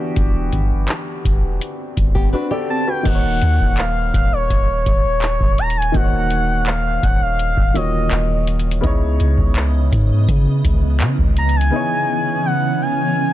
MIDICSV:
0, 0, Header, 1, 8, 480
1, 0, Start_track
1, 0, Tempo, 722892
1, 108, Time_signature, 4, 2, 24, 8
1, 8851, End_track
2, 0, Start_track
2, 0, Title_t, "Soft synth lead"
2, 0, Program_c, 0, 80
2, 1793, Note_on_c, 0, 81, 91
2, 1917, Note_on_c, 0, 79, 87
2, 1927, Note_off_c, 0, 81, 0
2, 2032, Note_off_c, 0, 79, 0
2, 2035, Note_on_c, 0, 78, 105
2, 2515, Note_on_c, 0, 77, 94
2, 2525, Note_off_c, 0, 78, 0
2, 2752, Note_off_c, 0, 77, 0
2, 2755, Note_on_c, 0, 77, 91
2, 2873, Note_on_c, 0, 73, 97
2, 2883, Note_off_c, 0, 77, 0
2, 3226, Note_off_c, 0, 73, 0
2, 3230, Note_on_c, 0, 73, 106
2, 3710, Note_on_c, 0, 82, 98
2, 3720, Note_off_c, 0, 73, 0
2, 3830, Note_on_c, 0, 80, 100
2, 3840, Note_off_c, 0, 82, 0
2, 3902, Note_off_c, 0, 80, 0
2, 3902, Note_on_c, 0, 80, 78
2, 3950, Note_on_c, 0, 78, 111
2, 3960, Note_off_c, 0, 80, 0
2, 4431, Note_on_c, 0, 77, 93
2, 4441, Note_off_c, 0, 78, 0
2, 4667, Note_on_c, 0, 78, 91
2, 4677, Note_off_c, 0, 77, 0
2, 4791, Note_on_c, 0, 77, 102
2, 4801, Note_off_c, 0, 78, 0
2, 5148, Note_on_c, 0, 75, 89
2, 5158, Note_off_c, 0, 77, 0
2, 5628, Note_off_c, 0, 75, 0
2, 7558, Note_on_c, 0, 82, 102
2, 7675, Note_on_c, 0, 80, 109
2, 7684, Note_off_c, 0, 82, 0
2, 8271, Note_on_c, 0, 78, 91
2, 8281, Note_off_c, 0, 80, 0
2, 8507, Note_off_c, 0, 78, 0
2, 8511, Note_on_c, 0, 80, 99
2, 8851, Note_off_c, 0, 80, 0
2, 8851, End_track
3, 0, Start_track
3, 0, Title_t, "Grand piano"
3, 0, Program_c, 1, 0
3, 0, Control_c, 1, 64, 127
3, 0, Note_on_c, 1, 52, 75
3, 0, Note_on_c, 1, 59, 68
3, 0, Note_on_c, 1, 62, 70
3, 0, Note_on_c, 1, 66, 70
3, 0, Note_on_c, 1, 67, 83
3, 1527, Note_off_c, 1, 66, 0
3, 1532, Note_off_c, 1, 67, 0
3, 1552, Note_on_c, 1, 71, 60
3, 1556, Note_on_c, 1, 66, 49
3, 1664, Note_off_c, 1, 71, 0
3, 1666, Note_off_c, 1, 66, 0
3, 1670, Note_on_c, 1, 74, 73
3, 1675, Note_on_c, 1, 69, 60
3, 1753, Note_off_c, 1, 52, 0
3, 1757, Note_off_c, 1, 59, 0
3, 1763, Note_off_c, 1, 62, 0
3, 1897, Note_off_c, 1, 74, 0
3, 1900, Note_off_c, 1, 69, 0
3, 1909, Note_on_c, 1, 71, 62
3, 1912, Note_on_c, 1, 66, 54
3, 2011, Note_on_c, 1, 51, 62
3, 2020, Note_on_c, 1, 58, 58
3, 2029, Note_off_c, 1, 66, 0
3, 2030, Note_on_c, 1, 63, 55
3, 2035, Control_c, 1, 64, 0
3, 2039, Note_on_c, 1, 66, 55
3, 2048, Note_on_c, 1, 72, 55
3, 2081, Note_off_c, 1, 72, 0
3, 2092, Note_on_c, 1, 73, 67
3, 2136, Note_off_c, 1, 71, 0
3, 2138, Control_c, 1, 64, 127
3, 3913, Note_off_c, 1, 51, 0
3, 3917, Note_off_c, 1, 58, 0
3, 3922, Note_off_c, 1, 63, 0
3, 3927, Note_off_c, 1, 66, 0
3, 3931, Note_on_c, 1, 51, 62
3, 3941, Note_on_c, 1, 58, 56
3, 3950, Note_on_c, 1, 63, 57
3, 3953, Note_off_c, 1, 73, 0
3, 3959, Note_on_c, 1, 66, 56
3, 3968, Note_on_c, 1, 72, 56
3, 4001, Note_off_c, 1, 72, 0
3, 4011, Note_on_c, 1, 73, 71
3, 5115, Note_off_c, 1, 51, 0
3, 5120, Note_off_c, 1, 58, 0
3, 5125, Note_off_c, 1, 63, 0
3, 5129, Note_off_c, 1, 66, 0
3, 5139, Note_on_c, 1, 51, 50
3, 5144, Note_on_c, 1, 58, 45
3, 5149, Note_off_c, 1, 73, 0
3, 5149, Note_on_c, 1, 65, 47
3, 5154, Note_on_c, 1, 66, 44
3, 5159, Note_on_c, 1, 73, 55
3, 5849, Note_on_c, 1, 49, 78
3, 5858, Note_on_c, 1, 59, 69
3, 5864, Note_off_c, 1, 51, 0
3, 5866, Note_off_c, 1, 58, 0
3, 5868, Note_off_c, 1, 65, 0
3, 5868, Note_on_c, 1, 63, 70
3, 5871, Note_off_c, 1, 66, 0
3, 5873, Note_off_c, 1, 73, 0
3, 5875, Control_c, 1, 64, 0
3, 5877, Note_on_c, 1, 64, 69
3, 5887, Note_on_c, 1, 73, 86
3, 5978, Control_c, 1, 64, 127
3, 7752, Note_off_c, 1, 49, 0
3, 7756, Note_off_c, 1, 59, 0
3, 7761, Note_off_c, 1, 63, 0
3, 7766, Note_off_c, 1, 64, 0
3, 7771, Note_off_c, 1, 73, 0
3, 7771, Note_on_c, 1, 49, 63
3, 7779, Note_on_c, 1, 59, 57
3, 7789, Note_on_c, 1, 63, 61
3, 7798, Note_on_c, 1, 64, 60
3, 7808, Note_on_c, 1, 73, 69
3, 8851, Note_off_c, 1, 49, 0
3, 8851, Note_off_c, 1, 59, 0
3, 8851, Note_off_c, 1, 63, 0
3, 8851, Note_off_c, 1, 64, 0
3, 8851, Note_off_c, 1, 73, 0
3, 8851, End_track
4, 0, Start_track
4, 0, Title_t, "Nylon-string guitar"
4, 0, Program_c, 2, 24
4, 1427, Note_on_c, 2, 67, 72
4, 1430, Note_on_c, 2, 59, 59
4, 1542, Note_off_c, 2, 67, 0
4, 1543, Note_off_c, 2, 59, 0
4, 1546, Note_on_c, 2, 71, 73
4, 1550, Note_on_c, 2, 62, 67
4, 1661, Note_off_c, 2, 71, 0
4, 1663, Note_off_c, 2, 62, 0
4, 1666, Note_on_c, 2, 67, 77
4, 1671, Note_on_c, 2, 59, 63
4, 2009, Note_off_c, 2, 67, 0
4, 2011, Note_off_c, 2, 59, 0
4, 8851, End_track
5, 0, Start_track
5, 0, Title_t, "Ambient pad"
5, 0, Program_c, 3, 92
5, 5866, Note_on_c, 3, 59, 79
5, 5867, Note_on_c, 3, 52, 77
5, 5867, Note_on_c, 3, 75, 95
5, 5868, Note_on_c, 3, 49, 83
5, 7768, Note_off_c, 3, 75, 0
5, 7789, Note_on_c, 3, 61, 91
5, 8851, Note_off_c, 3, 49, 0
5, 8851, Note_off_c, 3, 52, 0
5, 8851, Note_off_c, 3, 59, 0
5, 8851, Note_off_c, 3, 61, 0
5, 8851, End_track
6, 0, Start_track
6, 0, Title_t, "808-style bass"
6, 0, Program_c, 4, 38
6, 111, Note_on_c, 4, 28, 107
6, 340, Note_off_c, 4, 28, 0
6, 350, Note_on_c, 4, 31, 95
6, 580, Note_off_c, 4, 31, 0
6, 830, Note_on_c, 4, 28, 102
6, 1059, Note_off_c, 4, 28, 0
6, 1309, Note_on_c, 4, 28, 100
6, 1539, Note_off_c, 4, 28, 0
6, 2029, Note_on_c, 4, 27, 107
6, 2259, Note_off_c, 4, 27, 0
6, 2270, Note_on_c, 4, 39, 97
6, 2384, Note_off_c, 4, 39, 0
6, 2389, Note_on_c, 4, 27, 97
6, 2734, Note_off_c, 4, 27, 0
6, 2749, Note_on_c, 4, 27, 105
6, 2979, Note_off_c, 4, 27, 0
6, 2989, Note_on_c, 4, 27, 104
6, 3219, Note_off_c, 4, 27, 0
6, 3228, Note_on_c, 4, 27, 104
6, 3574, Note_off_c, 4, 27, 0
6, 3588, Note_on_c, 4, 27, 105
6, 3933, Note_off_c, 4, 27, 0
6, 3948, Note_on_c, 4, 27, 105
6, 4642, Note_off_c, 4, 27, 0
6, 4668, Note_on_c, 4, 27, 98
6, 5014, Note_off_c, 4, 27, 0
6, 5028, Note_on_c, 4, 27, 96
6, 5374, Note_off_c, 4, 27, 0
6, 5389, Note_on_c, 4, 27, 106
6, 5849, Note_off_c, 4, 27, 0
6, 5868, Note_on_c, 4, 37, 106
6, 6099, Note_off_c, 4, 37, 0
6, 6110, Note_on_c, 4, 37, 97
6, 6224, Note_off_c, 4, 37, 0
6, 6228, Note_on_c, 4, 37, 93
6, 6574, Note_off_c, 4, 37, 0
6, 6589, Note_on_c, 4, 44, 99
6, 6819, Note_off_c, 4, 44, 0
6, 6828, Note_on_c, 4, 49, 106
6, 7058, Note_off_c, 4, 49, 0
6, 7069, Note_on_c, 4, 37, 102
6, 7310, Note_on_c, 4, 49, 92
6, 7320, Note_off_c, 4, 37, 0
6, 7423, Note_off_c, 4, 49, 0
6, 7429, Note_on_c, 4, 37, 97
6, 7774, Note_off_c, 4, 37, 0
6, 8851, End_track
7, 0, Start_track
7, 0, Title_t, "Swell"
7, 0, Program_c, 5, 103
7, 0, Note_on_c, 5, 60, 79
7, 2028, Note_off_c, 5, 60, 0
7, 8851, End_track
8, 0, Start_track
8, 0, Title_t, "Drums"
8, 108, Note_on_c, 9, 36, 112
8, 109, Note_on_c, 9, 42, 62
8, 175, Note_off_c, 9, 36, 0
8, 175, Note_off_c, 9, 42, 0
8, 348, Note_on_c, 9, 36, 91
8, 349, Note_on_c, 9, 42, 60
8, 415, Note_off_c, 9, 36, 0
8, 415, Note_off_c, 9, 42, 0
8, 582, Note_on_c, 9, 42, 65
8, 588, Note_on_c, 9, 39, 115
8, 649, Note_off_c, 9, 42, 0
8, 654, Note_off_c, 9, 39, 0
8, 828, Note_on_c, 9, 36, 93
8, 833, Note_on_c, 9, 42, 80
8, 895, Note_off_c, 9, 36, 0
8, 899, Note_off_c, 9, 42, 0
8, 1072, Note_on_c, 9, 42, 67
8, 1138, Note_off_c, 9, 42, 0
8, 1307, Note_on_c, 9, 36, 89
8, 1309, Note_on_c, 9, 42, 66
8, 1374, Note_off_c, 9, 36, 0
8, 1376, Note_off_c, 9, 42, 0
8, 1428, Note_on_c, 9, 36, 89
8, 1494, Note_off_c, 9, 36, 0
8, 2027, Note_on_c, 9, 36, 116
8, 2027, Note_on_c, 9, 49, 89
8, 2028, Note_on_c, 9, 42, 64
8, 2094, Note_off_c, 9, 36, 0
8, 2094, Note_off_c, 9, 42, 0
8, 2094, Note_off_c, 9, 49, 0
8, 2268, Note_on_c, 9, 42, 58
8, 2334, Note_off_c, 9, 42, 0
8, 2387, Note_on_c, 9, 36, 81
8, 2453, Note_off_c, 9, 36, 0
8, 2502, Note_on_c, 9, 42, 69
8, 2507, Note_on_c, 9, 39, 112
8, 2568, Note_off_c, 9, 42, 0
8, 2574, Note_off_c, 9, 39, 0
8, 2747, Note_on_c, 9, 36, 96
8, 2751, Note_on_c, 9, 42, 78
8, 2813, Note_off_c, 9, 36, 0
8, 2818, Note_off_c, 9, 42, 0
8, 2987, Note_on_c, 9, 36, 84
8, 2991, Note_on_c, 9, 42, 69
8, 3053, Note_off_c, 9, 36, 0
8, 3057, Note_off_c, 9, 42, 0
8, 3227, Note_on_c, 9, 36, 91
8, 3229, Note_on_c, 9, 42, 64
8, 3293, Note_off_c, 9, 36, 0
8, 3295, Note_off_c, 9, 42, 0
8, 3466, Note_on_c, 9, 39, 103
8, 3468, Note_on_c, 9, 42, 77
8, 3532, Note_off_c, 9, 39, 0
8, 3534, Note_off_c, 9, 42, 0
8, 3586, Note_on_c, 9, 36, 87
8, 3653, Note_off_c, 9, 36, 0
8, 3707, Note_on_c, 9, 42, 54
8, 3773, Note_off_c, 9, 42, 0
8, 3785, Note_on_c, 9, 42, 59
8, 3852, Note_off_c, 9, 42, 0
8, 3866, Note_on_c, 9, 42, 55
8, 3932, Note_off_c, 9, 42, 0
8, 3946, Note_on_c, 9, 36, 111
8, 3947, Note_on_c, 9, 42, 62
8, 4013, Note_off_c, 9, 36, 0
8, 4013, Note_off_c, 9, 42, 0
8, 4186, Note_on_c, 9, 42, 60
8, 4253, Note_off_c, 9, 42, 0
8, 4421, Note_on_c, 9, 42, 64
8, 4426, Note_on_c, 9, 39, 117
8, 4487, Note_off_c, 9, 42, 0
8, 4492, Note_off_c, 9, 39, 0
8, 4666, Note_on_c, 9, 36, 92
8, 4670, Note_on_c, 9, 42, 80
8, 4732, Note_off_c, 9, 36, 0
8, 4737, Note_off_c, 9, 42, 0
8, 4909, Note_on_c, 9, 42, 71
8, 4976, Note_off_c, 9, 42, 0
8, 5026, Note_on_c, 9, 36, 89
8, 5093, Note_off_c, 9, 36, 0
8, 5149, Note_on_c, 9, 42, 66
8, 5216, Note_off_c, 9, 42, 0
8, 5386, Note_on_c, 9, 39, 105
8, 5388, Note_on_c, 9, 42, 80
8, 5452, Note_off_c, 9, 39, 0
8, 5455, Note_off_c, 9, 42, 0
8, 5627, Note_on_c, 9, 42, 59
8, 5693, Note_off_c, 9, 42, 0
8, 5707, Note_on_c, 9, 42, 57
8, 5773, Note_off_c, 9, 42, 0
8, 5786, Note_on_c, 9, 42, 58
8, 5852, Note_off_c, 9, 42, 0
8, 5866, Note_on_c, 9, 36, 115
8, 5867, Note_on_c, 9, 42, 66
8, 5933, Note_off_c, 9, 36, 0
8, 5934, Note_off_c, 9, 42, 0
8, 6108, Note_on_c, 9, 42, 60
8, 6174, Note_off_c, 9, 42, 0
8, 6227, Note_on_c, 9, 36, 88
8, 6293, Note_off_c, 9, 36, 0
8, 6342, Note_on_c, 9, 42, 66
8, 6347, Note_on_c, 9, 39, 114
8, 6408, Note_off_c, 9, 42, 0
8, 6413, Note_off_c, 9, 39, 0
8, 6586, Note_on_c, 9, 36, 98
8, 6591, Note_on_c, 9, 42, 85
8, 6653, Note_off_c, 9, 36, 0
8, 6657, Note_off_c, 9, 42, 0
8, 6826, Note_on_c, 9, 36, 92
8, 6830, Note_on_c, 9, 42, 73
8, 6893, Note_off_c, 9, 36, 0
8, 6896, Note_off_c, 9, 42, 0
8, 7067, Note_on_c, 9, 36, 91
8, 7069, Note_on_c, 9, 42, 68
8, 7133, Note_off_c, 9, 36, 0
8, 7136, Note_off_c, 9, 42, 0
8, 7307, Note_on_c, 9, 39, 113
8, 7309, Note_on_c, 9, 42, 78
8, 7373, Note_off_c, 9, 39, 0
8, 7375, Note_off_c, 9, 42, 0
8, 7427, Note_on_c, 9, 36, 89
8, 7494, Note_off_c, 9, 36, 0
8, 7547, Note_on_c, 9, 42, 57
8, 7614, Note_off_c, 9, 42, 0
8, 7629, Note_on_c, 9, 42, 58
8, 7695, Note_off_c, 9, 42, 0
8, 7709, Note_on_c, 9, 42, 55
8, 7776, Note_off_c, 9, 42, 0
8, 8851, End_track
0, 0, End_of_file